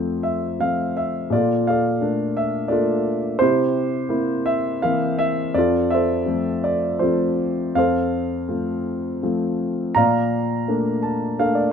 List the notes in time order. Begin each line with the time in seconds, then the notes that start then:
Already playing: F2 F3 A3 C4 F4 A4 C5
0.23 E5
0.60 F3 A3 C4 F5
0.97 E5
1.30 A#2 F4 D5
1.35 A4
1.67 A4 D5 F5
2.01 A3 A#3 D4
2.37 E5
2.68 A3 A#3 D4 F4 A4 D5
3.39 C3 E4 G4 C5
4.09 A#3 C4 E4
4.46 E5
4.82 E3 A#3 C4 F5
5.19 E5
5.54 F2 A4 D5
5.58 F4
5.91 A4 C5 E5
6.26 F3 A3 C4
6.64 D5
6.99 F3 A3 C4 F4 A4 C5
7.75 F2 A4 C5 F5
8.49 F3 A3 C4
9.23 F3 A3 C4
9.95 A#2 D5 F5 A#5
10.68 A3 A#3 D4
11.03 A5
11.39 A3 A#3 D4 F5
11.55 D5